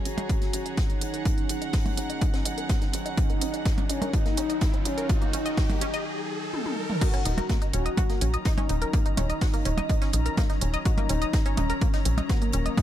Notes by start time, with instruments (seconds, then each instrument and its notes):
Already playing: ambient pad D#3 F#3 C#4, string section G#4 C#5 D#5 A#5, riser
0.05 analog synth bass D#1, synth arpeggio sound C#4, analog synth lead F#4, string section F#5, closed hi-hat
0.18 synth arpeggio sound D#5, closed hi-hat, percussion blips
0.29 synth arpeggio sound F#4, kick, closed hi-hat
0.41 synth arpeggio sound A#3, snare, closed hi-hat
0.53 analog synth bass A#1, synth arpeggio sound C#4, closed hi-hat
0.66 synth arpeggio sound D#5, closed hi-hat
0.77 synth arpeggio sound D#4, analog synth lead D#4, kick, snare, closed hi-hat
0.90 synth arpeggio sound C#4, closed hi-hat
1.01 analog synth bass D#1, synth arpeggio sound D#4, closed hi-hat
1.14 synth arpeggio sound A#4, closed hi-hat
1.25 synth arpeggio sound A#3, kick, closed hi-hat
1.38 synth arpeggio sound D#4, closed hi-hat
1.49 analog synth bass D#1, synth arpeggio sound C#4, closed hi-hat
1.62 synth arpeggio sound D#5, closed hi-hat
1.73 synth arpeggio sound F#4, kick, snare, closed hi-hat, open hi-hat
1.86 synth arpeggio sound A#3, closed hi-hat, percussion blips
1.97 analog synth bass D#1, synth arpeggio sound C#4, closed hi-hat
2.10 synth arpeggio sound D#5, closed hi-hat
2.21 synth arpeggio sound D#4, kick, closed hi-hat
2.33 synth arpeggio sound C#4, snare, closed hi-hat
2.45 analog synth bass A#1, synth arpeggio sound D#4, closed hi-hat
2.58 synth arpeggio sound A#4, closed hi-hat
2.69 synth arpeggio sound A#3, kick, snare, closed hi-hat
2.82 synth arpeggio sound D#4, snare, closed hi-hat
2.93 analog synth bass D#1, synth arpeggio sound C#4, closed hi-hat
3.06 synth arpeggio sound D#5, closed hi-hat
3.17 ambient pad D#4, analog synth lead D#4, synth arpeggio sound F#4, kick, closed hi-hat
3.30 synth arpeggio sound A#3, closed hi-hat
3.41 analog synth bass D#1, synth arpeggio sound C#4, closed hi-hat
3.54 synth arpeggio sound D#5, closed hi-hat
3.65 synth arpeggio sound D#4, kick, snare, closed hi-hat
3.78 synth arpeggio sound C#4, closed hi-hat, percussion blips
3.89 analog synth bass D#1, analog synth lead C#4, synth arpeggio sound D#4, closed hi-hat
4.02 synth arpeggio sound A#4, closed hi-hat, percussion blips
4.13 analog synth lead D#4, synth arpeggio sound F#4, kick, closed hi-hat
4.25 synth arpeggio sound A#3, snare, closed hi-hat
4.37 analog synth bass A#1, synth arpeggio sound C#4, closed hi-hat
4.50 synth arpeggio sound D#5, closed hi-hat
4.61 synth arpeggio sound D#4, kick, snare, closed hi-hat
4.74 synth arpeggio sound C#4, closed hi-hat
4.85 analog synth bass D#1, analog synth lead C#4, synth arpeggio sound D#4, closed hi-hat
4.98 synth arpeggio sound A#4, closed hi-hat
5.09 analog synth lead D#4, synth arpeggio sound F#4, kick, closed hi-hat
5.22 synth arpeggio sound A#3, closed hi-hat
5.33 analog synth bass D#1, synth arpeggio sound C#4, closed hi-hat
5.46 synth arpeggio sound D#5, closed hi-hat
5.57 analog synth lead D#4, synth arpeggio sound F#4, kick, snare, closed hi-hat, open hi-hat
5.70 synth arpeggio sound A#3, closed hi-hat, percussion blips
5.81 analog synth bass D#1, synth arpeggio sound C#4, closed hi-hat
5.94 synth arpeggio sound D#5, closed hi-hat
6.53 high tom
6.66 high tom
6.90 mid tom
7.01 ambient pad D#3 F#3 C#4, synth arpeggio sound D#4 D#5, analog synth lead F#4, kick, closed hi-hat, crash
7.14 synth arpeggio sound C#4 C#5, closed hi-hat
7.20 string section A#5
7.25 analog synth bass D#1, synth arpeggio sound D#4 D#5, closed hi-hat
7.38 synth arpeggio sound A#4 A#5, closed hi-hat, percussion blips
7.49 synth arpeggio sound A#3 A#4, kick, snare, closed hi-hat
7.62 synth arpeggio sound D#4 D#5, closed hi-hat
7.73 analog synth bass D#1, synth arpeggio sound C#4 C#5, analog synth lead F#4, closed hi-hat
7.86 synth arpeggio sound D#5 D#6, closed hi-hat
7.97 synth arpeggio sound F#4 F#5, kick, closed hi-hat, percussion blips
8.10 synth arpeggio sound A#3 A#4, snare, closed hi-hat
8.21 analog synth bass A#1, synth arpeggio sound C#4 C#5, closed hi-hat
8.34 synth arpeggio sound D#5 D#6, closed hi-hat
8.45 analog synth lead D#4, synth arpeggio sound D#4 D#5, kick, snare, closed hi-hat
8.58 synth arpeggio sound C#4 C#5, closed hi-hat, percussion blips
8.69 analog synth bass D#1, synth arpeggio sound D#4 D#5, closed hi-hat
8.82 synth arpeggio sound A#4 A#5, closed hi-hat
8.93 synth arpeggio sound A#3 A#4, kick, closed hi-hat
9.06 synth arpeggio sound D#4 D#5, closed hi-hat
9.17 analog synth bass D#1, synth arpeggio sound C#4 C#5, closed hi-hat, percussion blips
9.30 synth arpeggio sound D#5 D#6, closed hi-hat
9.41 synth arpeggio sound F#4 F#5, kick, snare, closed hi-hat, open hi-hat
9.54 synth arpeggio sound A#3 A#4, closed hi-hat
9.65 analog synth bass D#1, synth arpeggio sound C#4 C#5, closed hi-hat
9.78 synth arpeggio sound D#5 D#6, closed hi-hat, percussion blips
9.89 synth arpeggio sound D#4 D#5, kick, closed hi-hat
10.02 synth arpeggio sound C#4 C#5, snare, closed hi-hat
10.13 analog synth bass A#1, synth arpeggio sound D#4 D#5, closed hi-hat
10.26 synth arpeggio sound A#4 A#5, closed hi-hat
10.37 synth arpeggio sound A#3 A#4, kick, snare, closed hi-hat, percussion blips
10.50 synth arpeggio sound D#4 D#5, snare, closed hi-hat
10.61 analog synth bass D#1, synth arpeggio sound C#4 C#5, closed hi-hat
10.74 synth arpeggio sound D#5 D#6, closed hi-hat
10.85 analog synth lead D#4, synth arpeggio sound F#4 F#5, kick, closed hi-hat
10.98 synth arpeggio sound A#3 A#4, closed hi-hat, percussion blips
11.09 analog synth bass D#1, synth arpeggio sound C#4 C#5, closed hi-hat
11.22 synth arpeggio sound D#5 D#6, closed hi-hat
11.33 synth arpeggio sound D#4 D#5, kick, snare, closed hi-hat
11.46 synth arpeggio sound C#4 C#5, closed hi-hat
11.57 analog synth bass D#1, analog synth lead C#4, synth arpeggio sound D#4 D#5, closed hi-hat, percussion blips
11.70 synth arpeggio sound A#4 A#5, closed hi-hat
11.81 synth arpeggio sound A#3 A#4, kick, closed hi-hat
11.94 synth arpeggio sound D#4 D#5, snare, closed hi-hat
12.05 analog synth bass A#1, synth arpeggio sound C#4 C#5, closed hi-hat
12.18 synth arpeggio sound D#5 D#6, closed hi-hat, percussion blips
12.29 analog synth lead A#3, synth arpeggio sound F#4 F#5, kick, snare, closed hi-hat
12.42 synth arpeggio sound A#3 A#4, closed hi-hat
12.52 analog synth bass D#1, synth arpeggio sound C#4 C#5, closed hi-hat
12.66 synth arpeggio sound D#5 D#6, closed hi-hat
12.77 synth arpeggio sound D#4 D#5, kick, closed hi-hat, percussion blips